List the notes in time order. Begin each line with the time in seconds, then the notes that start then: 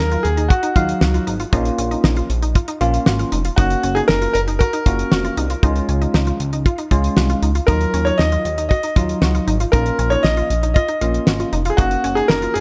Already playing: F#3 D#4 A#4 F5
0.00 D#2
0.12 F4, closed hi-hat
0.23 D#2 G#4, closed hi-hat
0.37 D#4, closed hi-hat
0.48 F#4, kick, closed hi-hat
0.63 D#4, closed hi-hat
0.76 D#2 F#3 D#4 F4 F5, kick, closed hi-hat
0.89 closed hi-hat
1.01 C#2 F#4, snare
1.14 F4, closed hi-hat
1.27 G#1 D#4, closed hi-hat
1.40 F4, closed hi-hat
1.53 A#1 A#3 C#4 D#4 F4, kick, closed hi-hat
1.65 closed hi-hat
1.78 A#1 C#4, closed hi-hat
1.91 D#4, closed hi-hat
2.04 A#1 D#4, snare
2.16 F4, closed hi-hat
2.30 A#1, closed hi-hat
2.42 D#4, closed hi-hat
2.55 F4, kick, closed hi-hat
2.68 D#4, closed hi-hat
2.81 A#1 A#3 C#4 F4, closed hi-hat
2.94 closed hi-hat
3.06 G#1 F#4, snare
3.19 F4, closed hi-hat
3.32 F1 D#4, closed hi-hat
3.45 F4, closed hi-hat
3.56 F#1 A#3 C#4 D#4 F#4, kick, closed hi-hat
3.70 closed hi-hat
3.83 F#1 C#4, closed hi-hat
3.95 D#4 G#4, closed hi-hat
4.08 F#1 D#4 A#4, snare
4.22 F4, closed hi-hat
4.33 F#1 A#4, closed hi-hat
4.48 D#4, closed hi-hat
4.59 F#4 A#4, kick, closed hi-hat
4.73 D#4, closed hi-hat
4.86 F#1 A#3 C#4 F4 F#4, kick, closed hi-hat
4.99 closed hi-hat
5.12 F1 F#4, snare
5.25 F4, closed hi-hat
5.37 C2 D#4, closed hi-hat
5.50 F4, closed hi-hat
5.63 C#2 G#3 C#4 D#4 F4, kick, closed hi-hat
5.76 closed hi-hat
5.89 C#2 C#4, closed hi-hat
6.02 D#4, closed hi-hat
6.14 C#2 D#4, snare
6.27 F4, closed hi-hat
6.40 C#2, closed hi-hat
6.53 D#4, closed hi-hat
6.66 F4, kick, closed hi-hat
6.78 D#4, closed hi-hat
6.91 C#2 G#3 C#4 F4, kick, closed hi-hat
7.04 closed hi-hat
7.17 C2 F#4, snare
7.30 F4, closed hi-hat
7.42 C#2 D#4, closed hi-hat
7.55 F4, closed hi-hat
7.67 D#2 F#3 D#4 F4 A#4, kick, closed hi-hat
7.81 closed hi-hat
7.94 D#2 C#4, closed hi-hat
8.05 D#4 C#5, closed hi-hat
8.18 D#2 D#4 D#5, snare
8.32 F4, closed hi-hat
8.45 D#2, closed hi-hat
8.58 D#4, closed hi-hat
8.69 F#4 D#5, kick, closed hi-hat
8.83 D#4, closed hi-hat
8.96 D#2 F#3 D#4 F4, kick, closed hi-hat
9.09 closed hi-hat
9.22 C#2 F#4, snare
9.35 F4, closed hi-hat
9.47 G#1 D#4, closed hi-hat
9.60 F4, closed hi-hat
9.72 A#1 A#3 C#4 D#4 F4 A#4, kick, closed hi-hat
9.86 closed hi-hat
9.99 A#1 C#4, closed hi-hat
10.10 D#4 C#5, closed hi-hat
10.23 A#1 D#4 D#5, snare
10.37 F4, closed hi-hat
10.50 A#1, closed hi-hat
10.63 D#4, closed hi-hat
10.74 F4 D#5, kick, closed hi-hat
10.88 D#4, closed hi-hat
11.01 A#1 A#3 C#4 F4, closed hi-hat
11.14 closed hi-hat
11.27 G#1 F#4, snare
11.40 F4, closed hi-hat
11.53 F1 D#4, closed hi-hat
11.65 F4, closed hi-hat
11.70 G#4
11.77 F#1 A#3 C#4 D#4 F#4, kick, closed hi-hat
11.91 closed hi-hat
12.04 F#1 C#4, closed hi-hat
12.15 D#4 G#4, closed hi-hat
12.28 F#1 D#4 A#4, snare
12.42 F4, closed hi-hat
12.54 F#1 G#4, closed hi-hat